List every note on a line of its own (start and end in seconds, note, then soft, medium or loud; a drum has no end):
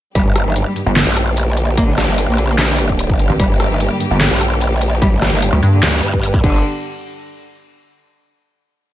0.15 0.44 G1 medium
0.15 6.40 D3 medium
0.15 0.21 G3 loud
0.15 6.40 G3 medium
0.15 6.40 A#3 medium
0.15 6.40 G4 medium
0.15 kick loud
0.15 closed hi-hat medium
0.26 0.31 G2 medium
0.36 0.41 G2 medium
0.36 cross-stick medium
0.36 closed hi-hat medium
0.46 0.65 G1 medium
0.46 0.51 D#3 medium
0.56 0.61 G2 medium
0.56 closed hi-hat medium
0.66 0.71 G3 medium
0.76 0.82 G2 medium
0.76 closed hi-hat medium
0.86 1.05 G1 loud
0.86 0.92 G3 medium
0.96 1.02 G2 medium
0.96 snare loud
0.96 clap loud
0.96 closed hi-hat medium
1.07 1.86 A#1 loud
1.07 1.12 G2 medium
1.17 cross-stick medium
1.17 closed hi-hat medium
1.37 closed hi-hat medium
1.57 closed hi-hat medium
1.77 1.83 A#3 loud
1.77 kick loud
1.77 closed hi-hat medium
1.88 2.07 A1 loud
1.88 1.93 D3 medium
1.98 2.03 D3 medium
1.98 cross-stick medium
1.98 snare medium
1.98 closed hi-hat medium
2.08 2.27 G1 loud
2.08 2.13 G3 medium
2.18 2.24 D3 medium
2.18 closed hi-hat medium
2.28 3.08 A#1 loud
2.28 2.34 A#3 medium
2.38 2.44 D3 medium
2.38 closed hi-hat medium
2.49 2.54 A#3 medium
2.59 2.64 D3 medium
2.59 cross-stick medium
2.59 snare loud
2.59 clap loud
2.59 closed hi-hat medium
2.69 2.74 D3 medium
2.79 closed hi-hat medium
2.89 kick medium
2.99 closed hi-hat medium
3.10 3.28 G1 loud
3.10 kick loud
3.19 closed hi-hat medium
3.30 3.38 A1 loud
3.40 3.69 G1 loud
3.40 3.45 G3 loud
3.40 kick loud
3.40 closed hi-hat medium
3.50 3.55 G2 medium
3.60 3.65 G2 medium
3.60 cross-stick medium
3.60 closed hi-hat medium
3.70 3.89 G1 loud
3.70 3.75 D#3 medium
3.80 3.86 G2 medium
3.80 closed hi-hat medium
3.91 3.96 G3 medium
4.00 4.06 G2 medium
4.00 closed hi-hat medium
4.11 4.29 G1 loud
4.11 4.16 G3 medium
4.21 4.26 G2 medium
4.21 snare loud
4.21 clap loud
4.21 closed hi-hat medium
4.31 5.11 A#1 loud
4.31 4.36 G2 medium
4.41 cross-stick medium
4.41 closed hi-hat medium
4.61 closed hi-hat medium
4.82 closed hi-hat medium
5.02 5.07 G3 loud
5.02 kick loud
5.02 closed hi-hat medium
5.12 5.31 A1 loud
5.12 5.17 G2 medium
5.22 5.28 G2 medium
5.22 cross-stick medium
5.22 snare medium
5.22 closed hi-hat medium
5.32 5.51 G1 loud
5.32 5.38 D#3 medium
5.42 5.48 G2 medium
5.42 closed hi-hat medium
5.53 5.61 D2 loud
5.53 5.58 G3 medium
5.63 5.81 G2 loud
5.63 5.68 G2 medium
5.63 closed hi-hat medium
5.73 5.78 D3 medium
5.83 6.02 D2 loud
5.83 5.88 G2 medium
5.83 cross-stick medium
5.83 snare loud
5.83 clap medium
5.83 closed hi-hat medium
5.93 5.98 G2 medium
6.03 6.42 G2 loud
6.03 closed hi-hat medium
6.14 kick medium
6.23 closed hi-hat medium
6.34 kick loud
6.44 6.63 G1 loud
6.44 6.59 D3 loud
6.44 6.63 D3 medium
6.44 6.63 G3 medium
6.44 6.63 B3 medium
6.44 6.63 G4 medium
6.44 kick loud
6.44 crash medium